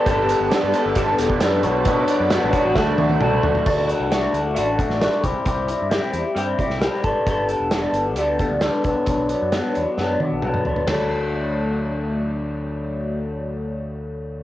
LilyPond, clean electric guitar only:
\new Staff \with { instrumentName = "Clean electric guitar" } { \time 4/4 \key d \mixolydian \tempo 4 = 133 <g b d' a'>4 <g b d' a'>8 <b d' a'>8 <g b d' a'>4 <g b d' a'>8 <fis b d' fis'>8 | <fis b d' fis'>4 <fis b d' fis'>8 <b d' fis'>8 <a d' fis'>4 <a d' fis'>8 <d' fis'>8 | <a d' fis'>8 <d' fis'>8 <a d' fis'>4 <a d' fis'>8 <d' fis'>8 <a d' fis'>8 <g c' e' g'>8 | <g c' e' g'>8 <c' e' g'>8 <g c' e' g'>4 <g c' e' g'>8 <c' e' g'>8 <g c' e' g'>8 <g b d' a'>8 |
<g b d' a'>8 <b d' a'>8 <g b d' a'>4 <g b d' a'>8 <b d' a'>8 <g b d' a'>8 <fis b d'>8 | <fis b d'>8 <b d'>8 <fis b d'>4 <fis b d'>8 <b d'>8 <fis b d'>8 <b d'>8 | <fis a d'>1~ | <fis a d'>1 | }